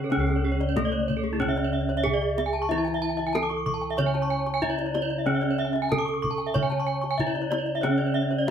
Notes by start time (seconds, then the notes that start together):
Already playing: C#3 D3 C#4
0.04 A4
0.10 C#3 C#4 C#5
0.17 C#2 G#4
0.27 A4, kendang slap
0.36 C#5
0.45 G#4
0.52 C#5
0.60 D5, kendang slap
0.69 C#5
0.76 A3 D4 A4, kendang high, kendang low
0.85 D5
0.92 C#5, kendang slap
0.99 D5
1.08 C#5, kendang low
1.17 A4
1.24 G#4
1.33 E4
1.40 C#3 C#4 C#5, kendang low
1.48 E5
1.56 D5, kendang slap
1.64 C#5
1.73 E5
1.81 D5
1.89 C#5, kendang slap
1.97 E5
2.04 D4 G#4 G#5, kendang low
2.14 D5
2.21 E5, kendang slap
2.29 D5
2.38 E5, kendang high
2.46 G#5
2.53 A5
2.62 C#6
2.69 E3 E4 E5, kendang high
2.78 A5
2.85 G#5, kendang slap
2.94 E5
3.02 A5
3.09 G#5
3.17 E5, kendang slap
3.27 G#5
3.33 D4 A4 A5, kendang high
3.43 D6
3.50 C#6, kendang slap
3.57 D6
3.66 C#6, kendang low
3.74 A5
3.82 G#5
3.90 E5
3.97 C#3 C#4 C#5 C#6, kendang high, kendang low
4.06 G#5
4.14 A5, kendang slap
4.22 C#6
4.30 G#5
4.39 A5
4.46 C#6, kendang slap
4.54 G#5
4.62 D4 E4 E5, kendang low
4.70 C#5
4.78 D5, kendang slap
4.86 C#5
4.94 D5, kendang high
5.02 C#5
5.10 D5
5.18 E5
5.26 C#3 C#4 C#5
5.35 E5
5.41 D5, kendang slap
5.51 C#5
5.58 E5
5.65 G#5
5.73 E5, kendang slap
5.82 G#5
5.89 D4 A4 A5, kendang high, kendang low
5.98 D6
6.05 C#6, kendang slap
6.14 D6
6.22 C#6, kendang low
6.31 A5
6.38 G#5
6.47 E5
6.54 C#3 C#4 C#5 C#6, kendang low
6.63 G#5
6.70 A5, kendang slap
6.80 C#6
6.87 G#5
6.94 A5
7.02 C#6, kendang slap
7.11 G#5
7.18 D4 E4 E5, kendang low
7.27 C#5
7.34 D5, kendang slap
7.42 C#5
7.51 D5, kendang high
7.59 C#5
7.66 D5
7.75 E5
7.81 C#3 C#4 C#5, kendang high
7.91 E5
7.98 D5, kendang slap
8.06 C#5
8.14 E5
8.22 D5
8.31 C#5, kendang slap
8.38 D5
8.47 E5